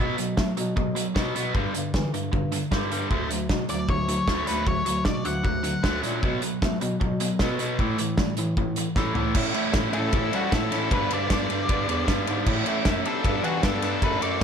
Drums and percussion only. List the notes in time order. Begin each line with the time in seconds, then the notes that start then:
0.18 closed hi-hat
0.37 kick, snare
0.57 closed hi-hat
0.77 kick
0.96 closed hi-hat
1.16 kick, snare
1.36 closed hi-hat
1.55 kick
1.75 closed hi-hat
1.94 kick, snare
2.14 closed hi-hat
2.33 kick
2.52 closed hi-hat
2.72 kick, snare
2.92 closed hi-hat
3.11 kick
3.31 closed hi-hat
3.49 kick, snare
3.69 closed hi-hat
3.89 kick
4.09 closed hi-hat
4.28 kick, snare
4.47 snare, closed hi-hat
4.67 kick
4.86 closed hi-hat
5.05 kick, snare
5.25 closed hi-hat
5.45 kick
5.64 closed hi-hat
5.84 kick, snare
6.03 snare, closed hi-hat
6.23 kick
6.42 closed hi-hat
6.62 kick, snare
6.81 closed hi-hat
7.01 kick
7.20 closed hi-hat
7.39 kick, snare
7.59 closed hi-hat
7.79 kick
7.98 closed hi-hat
8.18 kick, snare
8.37 closed hi-hat
8.57 kick
8.76 closed hi-hat
8.96 kick, snare
9.15 floor tom
9.35 kick, crash
9.54 ride
9.73 kick, snare, ride
9.93 ride
10.13 kick, ride
10.33 ride
10.52 kick, snare, ride
10.72 snare, ride
10.91 kick, ride
11.11 ride
11.30 kick, snare, ride
11.50 ride
11.69 kick, ride
11.89 ride
12.08 kick, snare, ride
12.27 ride
12.46 kick, crash
12.66 ride
12.85 kick, snare, ride
13.05 ride
13.25 kick, ride
13.44 ride
13.63 kick, snare, ride
13.82 snare, ride
14.02 kick, ride
14.22 ride